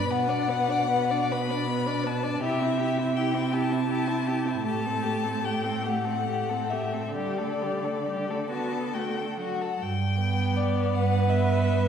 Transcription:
Already playing: violin B5
0.09 cello B2, viola B3, violin B4 F#5
0.27 viola D4, violin D5
0.48 viola B3, violin B4
0.68 viola D4, violin D5
0.89 viola B3, violin B4
1.11 viola D4, violin D5
1.31 viola B3, violin B4 B5
1.50 viola D4, violin D5
1.69 viola B3, violin B4
1.86 viola D4, violin D5
2.04 viola B3, violin B4 A5
2.23 viola D4, violin D5
2.41 cello C3, viola E4, violin G4 E5
2.60 viola C4, violin E4
2.78 viola E4, violin G4
2.98 viola C4, violin E4
3.16 viola E4, violin G4 G5
3.34 viola C4, violin E4
3.52 viola E4, violin G4 A5
3.70 viola C4, violin E4
3.88 viola E4, violin G4
4.07 viola C4, violin E4
4.27 viola E4, violin G4
4.46 viola C4, violin E4
4.64 cello A2, viola A3, violin G4 A5
4.85 viola C4, violin A4
5.03 viola A3, violin G4
5.24 viola C4, violin A4
5.43 viola A3, violin G4 G5
5.64 viola C4, violin A4
5.83 viola A3, violin G4 F#5
6.05 viola C4, violin A4
6.27 viola A3, violin G4
6.50 viola C4, violin A4
6.69 viola A3, violin G4 E5
6.93 viola C4, violin A4
7.15 cello D3, viola G3, violin G4 D5
7.38 viola A3, violin A4
7.62 viola G3, violin G4
7.84 viola A3, violin A4
8.07 viola G3, violin G4
8.29 viola A3, violin A4
8.49 viola B3, violin F#4 A5
8.73 violin A4
8.93 viola A3, violin F#4 G5
9.17 violin A4
9.38 viola F#3, violin F#4 F#5
9.61 violin A4
9.80 cello G2, violin G5
10.20 violin B3
10.57 violin D5
10.93 cello G2, viola B4, violin F#5
11.29 violin B3 E5

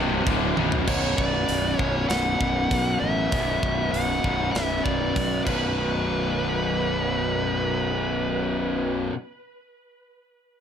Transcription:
Already playing: fingered electric bass C1, distorted electric guitar C2 G2 C3, pipe organ F#3 D4 B4
0.25 fingered electric bass D1, distorted electric guitar D2 A2 D3, kick, china
0.56 fingered electric bass B0, distorted electric guitar B1 F#2 B2, high tom
0.72 floor tom
0.87 fingered electric bass B0, distorted electric guitar B1 F#2 B2, lead electric guitar C#5, kick, crash
1.17 fingered electric bass B0, lead electric guitar D5, kick
1.49 fingered electric bass B0, open hi-hat
1.77 fingered electric bass B0, distorted electric guitar B1 F#2 B2, lead electric guitar C#5, kick
2.09 fingered electric bass B0, lead electric guitar F#5, snare, open hi-hat
2.41 fingered electric bass B0, kick
2.71 fingered electric bass B1, kick, open hi-hat
3.00 fingered electric bass A1, lead electric guitar E5
3.31 fingered electric bass B0, distorted electric guitar B1 F#2 B2, kick, open hi-hat
3.63 fingered electric bass B0, kick
3.92 fingered electric bass B0, lead electric guitar F#5, open hi-hat
4.23 fingered electric bass B0, distorted electric guitar B1 F#2 B2, kick
4.52 fingered electric bass B0, lead electric guitar E5, snare, open hi-hat
4.84 fingered electric bass B0, lead electric guitar D5, kick
5.16 fingered electric bass B1, kick, open hi-hat
5.45 fingered electric bass B0, distorted electric guitar B1 F#2, lead electric guitar B4, kick, crash
5.50 distorted electric guitar B2

